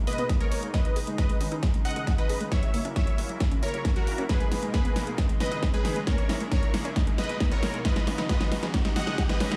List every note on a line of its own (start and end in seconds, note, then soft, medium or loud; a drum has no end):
0.00 0.12 B2 medium
0.00 0.12 G#3 medium
0.00 0.12 A#3 medium
0.00 0.12 D#4 medium
0.00 riser medium
0.07 0.15 G#1 medium
0.07 0.18 A#3 medium
0.07 0.34 B4 medium
0.07 0.34 D#5 loud
0.07 open hi-hat loud
0.13 closed hi-hat medium
0.18 0.35 G#1 medium
0.18 0.34 B2 medium
0.18 0.34 G#3 medium
0.18 0.34 A#3 medium
0.18 0.29 B3 loud
0.18 0.34 D#4 medium
0.18 closed hi-hat medium
0.29 0.36 D#4 medium
0.29 kick loud
0.29 snare medium
0.29 closed hi-hat medium
0.40 0.56 B2 medium
0.40 0.56 G#3 medium
0.40 0.45 G#3 medium
0.40 0.56 A#3 medium
0.40 0.56 D#4 medium
0.40 0.67 A#4 medium
0.40 0.67 C#5 medium
0.40 closed hi-hat medium
0.52 0.68 G#1 medium
0.52 open hi-hat loud
0.63 0.70 B2 medium
0.63 0.70 G#3 medium
0.63 0.70 A#3 medium
0.63 0.70 D#4 medium
0.63 closed hi-hat soft
0.74 0.84 C#4 medium
0.74 1.10 B4 medium
0.74 1.10 D#5 loud
0.74 kick loud
0.74 snare medium
0.74 closed hi-hat medium
0.85 1.00 C#3 medium
0.85 1.00 D#3 medium
0.85 1.00 G#3 medium
0.85 1.00 D#4 medium
0.85 0.96 D#4 medium
0.85 closed hi-hat soft
0.96 1.12 C#2 loud
0.96 1.03 G#4 medium
0.96 open hi-hat loud
1.07 1.23 C#3 medium
1.07 1.23 D#3 medium
1.07 1.23 G#3 medium
1.07 1.12 G#3 medium
1.07 1.23 D#4 medium
1.07 closed hi-hat medium
1.18 1.54 B4 medium
1.18 1.54 D#5 medium
1.18 kick loud
1.18 snare medium
1.18 closed hi-hat medium
1.29 1.45 C#3 medium
1.29 1.45 D#3 medium
1.29 1.45 G#3 medium
1.29 1.36 G#3 medium
1.29 1.45 D#4 medium
1.29 closed hi-hat medium
1.41 1.57 C#2 loud
1.41 1.51 C#4 medium
1.41 open hi-hat loud
1.51 1.67 C#3 medium
1.51 1.67 D#3 medium
1.51 1.67 G#3 medium
1.51 1.67 D#4 medium
1.51 1.62 D#4 loud
1.51 closed hi-hat soft
1.63 1.70 G#4 medium
1.63 kick loud
1.63 snare medium
1.63 closed hi-hat medium
1.74 1.89 C#3 medium
1.74 1.89 D#3 medium
1.74 1.89 G#3 medium
1.74 1.78 G#3 medium
1.74 1.89 D#4 medium
1.74 closed hi-hat medium
1.85 1.93 B1 medium
1.85 2.12 D#5 medium
1.85 2.12 F#5 loud
1.85 open hi-hat loud
1.91 closed hi-hat medium
1.96 2.12 C#2 medium
1.96 2.12 C#3 medium
1.96 2.12 D#3 medium
1.96 2.12 G#3 medium
1.96 2.03 G#3 medium
1.96 2.12 D#4 medium
1.96 closed hi-hat medium
2.07 2.18 C#4 medium
2.07 kick loud
2.07 snare medium
2.07 closed hi-hat medium
2.18 2.34 C#3 medium
2.18 2.34 D#3 medium
2.18 2.34 G#3 medium
2.18 2.29 D#4 loud
2.18 2.34 D#4 medium
2.18 2.45 B4 medium
2.18 2.45 D#5 medium
2.18 closed hi-hat medium
2.29 2.46 C#2 medium
2.29 2.36 G#4 medium
2.29 open hi-hat loud
2.41 2.48 C#3 medium
2.41 2.48 D#3 medium
2.41 2.45 G#3 medium
2.41 2.48 G#3 medium
2.41 2.48 D#4 medium
2.41 closed hi-hat soft
2.52 2.87 C#5 medium
2.52 2.87 E5 loud
2.52 kick loud
2.52 snare medium
2.52 closed hi-hat medium
2.63 2.78 C#3 medium
2.63 2.70 F#3 medium
2.63 2.78 F#3 medium
2.63 2.78 A#3 medium
2.63 2.78 E4 medium
2.63 closed hi-hat soft
2.74 2.90 F#1 medium
2.74 2.84 A#3 medium
2.74 open hi-hat loud
2.85 3.01 C#3 medium
2.85 3.01 F#3 medium
2.85 3.01 A#3 medium
2.85 2.96 C#4 loud
2.85 3.01 E4 medium
2.85 closed hi-hat soft
2.96 3.03 E4 medium
2.96 3.32 C#5 medium
2.96 3.32 E5 loud
2.96 kick loud
2.96 snare medium
2.96 closed hi-hat medium
3.07 3.23 C#3 medium
3.07 3.11 F#3 medium
3.07 3.23 F#3 medium
3.07 3.23 A#3 medium
3.07 3.23 E4 medium
3.07 closed hi-hat soft
3.18 3.35 F#1 loud
3.18 open hi-hat loud
3.29 3.45 C#3 medium
3.29 3.36 F#3 medium
3.29 3.45 F#3 medium
3.29 3.45 A#3 medium
3.29 3.45 E4 medium
3.29 closed hi-hat soft
3.40 3.51 A#3 medium
3.40 kick loud
3.40 snare medium
3.40 closed hi-hat medium
3.51 3.67 C#3 medium
3.51 3.67 F#3 medium
3.51 3.67 A#3 medium
3.51 3.62 C#4 loud
3.51 3.67 E4 medium
3.51 closed hi-hat soft
3.63 3.71 E1 medium
3.63 3.70 E4 medium
3.63 3.90 A#4 medium
3.63 3.90 C#5 loud
3.63 open hi-hat loud
3.68 closed hi-hat medium
3.74 3.90 F#1 medium
3.74 3.89 C#3 medium
3.74 3.78 F#3 medium
3.74 3.89 F#3 medium
3.74 3.89 A#3 medium
3.74 3.89 E4 medium
3.74 closed hi-hat medium
3.85 kick loud
3.85 snare medium
3.85 closed hi-hat medium
3.96 4.12 C#3 medium
3.96 4.03 F#3 medium
3.96 4.12 F#3 medium
3.96 4.12 A#3 medium
3.96 4.12 E4 medium
3.96 4.23 F#4 medium
3.96 4.23 A#4 loud
3.96 closed hi-hat soft
4.07 4.24 F#1 medium
4.07 4.18 A#3 medium
4.07 open hi-hat loud
4.18 4.26 C#3 medium
4.18 4.26 F#3 medium
4.18 4.26 A#3 medium
4.18 4.29 C#4 loud
4.18 4.26 E4 medium
4.18 closed hi-hat soft
4.29 4.36 D#4 medium
4.29 4.65 G#4 medium
4.29 4.65 B4 loud
4.29 kick loud
4.29 snare medium
4.29 closed hi-hat medium
4.40 4.56 B2 medium
4.40 4.45 G#3 medium
4.40 4.56 G#3 medium
4.40 4.56 A#3 medium
4.40 4.56 D#4 medium
4.40 closed hi-hat soft
4.51 4.68 G#1 loud
4.51 4.59 B3 medium
4.51 snare medium
4.51 open hi-hat loud
4.63 4.78 B2 medium
4.63 4.70 G#3 medium
4.63 4.78 G#3 medium
4.63 4.78 A#3 medium
4.63 4.78 D#4 medium
4.63 closed hi-hat soft
4.74 4.84 A#3 medium
4.74 5.10 G#4 medium
4.74 5.10 B4 medium
4.74 kick loud
4.74 snare medium
4.74 closed hi-hat medium
4.85 5.01 B2 medium
4.85 5.01 G#3 medium
4.85 5.01 A#3 medium
4.85 4.95 B3 loud
4.85 5.01 D#4 medium
4.85 closed hi-hat soft
4.96 5.12 G#1 loud
4.96 5.03 D#4 medium
4.96 snare medium
4.96 open hi-hat loud
5.07 5.23 B2 medium
5.07 5.11 G#3 medium
5.07 5.23 G#3 medium
5.07 5.23 A#3 medium
5.07 5.23 D#4 medium
5.07 closed hi-hat soft
5.18 5.25 D#4 medium
5.18 kick loud
5.18 snare medium
5.18 closed hi-hat medium
5.29 5.45 C#3 medium
5.29 5.45 D#3 medium
5.29 5.36 G#3 medium
5.29 5.45 G#3 medium
5.29 5.45 D#4 medium
5.29 closed hi-hat soft
5.40 5.49 C#2 medium
5.40 5.51 C#4 medium
5.40 5.67 B4 medium
5.40 5.67 D#5 loud
5.40 snare medium
5.40 open hi-hat loud
5.46 closed hi-hat medium
5.51 5.68 C#2 medium
5.51 5.67 C#3 medium
5.51 5.67 D#3 medium
5.51 5.67 G#3 medium
5.51 5.62 D#4 loud
5.51 5.67 D#4 medium
5.51 closed hi-hat medium
5.62 5.70 G#4 medium
5.62 kick loud
5.62 snare medium
5.62 closed hi-hat medium
5.74 5.89 C#3 medium
5.74 5.89 D#3 medium
5.74 5.78 G#3 medium
5.74 5.89 G#3 medium
5.74 5.89 D#4 medium
5.74 6.01 G#4 medium
5.74 6.01 B4 medium
5.74 closed hi-hat medium
5.85 6.01 C#2 medium
5.85 5.92 D#4 medium
5.85 snare medium
5.85 open hi-hat loud
5.96 6.04 C#3 medium
5.96 6.04 D#3 medium
5.96 6.04 G#3 medium
5.96 6.03 G#3 medium
5.96 6.04 D#4 medium
5.96 closed hi-hat soft
6.07 6.18 A#3 medium
6.07 6.43 A#4 medium
6.07 6.43 C#5 loud
6.07 kick loud
6.07 snare medium
6.07 closed hi-hat medium
6.18 6.34 C#3 medium
6.18 6.34 G#3 medium
6.18 6.34 A#3 medium
6.18 6.29 C#4 loud
6.18 6.34 E4 medium
6.18 closed hi-hat medium
6.29 6.46 A#1 loud
6.29 6.36 E4 medium
6.29 snare medium
6.29 open hi-hat loud
6.40 6.56 C#3 medium
6.40 6.45 G#3 medium
6.40 6.56 G#3 medium
6.40 6.56 A#3 medium
6.40 6.56 E4 medium
6.40 closed hi-hat medium
6.52 6.59 C#4 medium
6.52 6.88 A#4 medium
6.52 6.88 C#5 loud
6.52 kick loud
6.52 snare medium
6.52 closed hi-hat medium
6.62 6.78 C#3 medium
6.62 6.78 G#3 medium
6.62 6.70 G#3 medium
6.62 6.78 A#3 medium
6.62 6.78 E4 medium
6.62 closed hi-hat medium
6.74 6.90 A#1 loud
6.74 6.84 A#3 medium
6.74 snare medium
6.74 open hi-hat loud
6.85 7.00 C#3 medium
6.85 7.01 G#3 medium
6.85 7.01 A#3 medium
6.85 6.95 C#4 loud
6.85 7.01 E4 medium
6.85 closed hi-hat soft
6.96 7.03 D#4 medium
6.96 kick loud
6.96 snare medium
6.96 closed hi-hat medium
7.07 7.23 B2 medium
7.07 7.23 G#3 medium
7.07 7.11 G#3 medium
7.07 7.23 A#3 medium
7.07 7.23 D#4 loud
7.07 closed hi-hat medium
7.18 7.26 G#1 medium
7.18 7.25 B3 medium
7.18 7.45 B4 medium
7.18 7.45 D#5 loud
7.18 snare medium
7.18 open hi-hat loud
7.24 closed hi-hat medium
7.29 7.46 G#1 medium
7.29 7.45 B2 medium
7.29 7.36 G#3 medium
7.29 7.45 G#3 medium
7.29 7.45 A#3 medium
7.29 7.45 D#4 medium
7.29 closed hi-hat medium
7.40 7.51 A#3 medium
7.40 kick loud
7.40 snare medium
7.40 closed hi-hat medium
7.51 7.67 B2 medium
7.51 7.67 G#3 medium
7.51 7.67 A#3 medium
7.51 7.62 B3 loud
7.51 7.67 D#4 medium
7.51 7.79 A#4 medium
7.51 7.79 C#5 medium
7.51 closed hi-hat medium
7.63 7.79 G#1 medium
7.63 7.70 D#4 medium
7.63 snare medium
7.63 open hi-hat loud
7.74 7.82 B2 loud
7.74 7.78 G#3 medium
7.74 7.82 G#3 medium
7.74 7.82 A#3 medium
7.74 7.82 D#4 medium
7.74 closed hi-hat soft
7.85 7.92 D#4 medium
7.85 8.21 B4 medium
7.85 8.21 D#5 loud
7.85 kick loud
7.85 snare loud
7.85 closed hi-hat medium
7.96 8.12 C#3 medium
7.96 8.12 D#3 medium
7.96 8.03 G#3 medium
7.96 8.12 G#3 loud
7.96 8.12 D#4 loud
7.96 snare medium
7.96 closed hi-hat medium
8.07 8.23 C#2 loud
8.07 8.18 C#4 medium
8.07 snare medium
8.07 open hi-hat loud
8.18 8.34 C#3 medium
8.18 8.34 D#3 medium
8.18 8.34 G#3 medium
8.18 8.29 D#4 loud
8.18 8.34 D#4 medium
8.18 snare medium
8.18 closed hi-hat medium
8.29 8.36 G#4 medium
8.29 8.65 B4 medium
8.29 8.65 D#5 loud
8.29 kick loud
8.29 snare medium
8.29 closed hi-hat medium
8.40 8.56 C#3 medium
8.40 8.56 D#3 medium
8.40 8.45 G#3 medium
8.40 8.56 G#3 medium
8.40 8.56 D#4 medium
8.40 snare medium
8.40 closed hi-hat medium
8.51 8.68 C#2 loud
8.51 8.59 D#4 medium
8.51 snare loud
8.51 open hi-hat loud
8.63 8.78 C#3 medium
8.63 8.78 D#3 medium
8.63 8.70 G#3 medium
8.63 8.78 G#3 medium
8.63 8.78 D#4 medium
8.63 snare medium
8.63 closed hi-hat medium
8.74 8.84 C#4 medium
8.74 kick loud
8.74 snare medium
8.74 closed hi-hat medium
8.85 9.01 C#3 medium
8.85 9.01 D#3 medium
8.85 9.01 G#3 medium
8.85 8.95 D#4 loud
8.85 9.01 D#4 medium
8.85 snare medium
8.85 closed hi-hat medium
8.96 9.04 B1 medium
8.96 9.03 G#4 medium
8.96 9.23 D#5 medium
8.96 9.23 F#5 loud
8.96 snare loud
8.96 open hi-hat loud
9.02 closed hi-hat medium
9.07 9.23 C#2 medium
9.07 9.23 C#3 medium
9.07 9.23 D#3 medium
9.07 9.11 G#3 medium
9.07 9.23 G#3 medium
9.07 9.23 D#4 medium
9.07 snare medium
9.07 closed hi-hat medium
9.18 9.25 D#4 medium
9.18 kick loud
9.18 snare loud
9.18 closed hi-hat medium
9.29 9.45 C#3 medium
9.29 9.45 D#3 medium
9.29 9.36 G#3 medium
9.29 9.45 G#3 medium
9.29 9.45 D#4 medium
9.29 9.56 B4 medium
9.29 9.56 D#5 loud
9.29 snare medium
9.29 closed hi-hat medium
9.40 9.57 C#2 medium
9.40 9.51 C#4 medium
9.40 snare loud
9.40 open hi-hat loud
9.51 9.57 C#3 medium
9.51 9.57 D#3 medium
9.51 9.57 G#3 medium
9.51 9.57 D#4 loud
9.51 9.57 D#4 medium
9.51 snare medium
9.51 closed hi-hat medium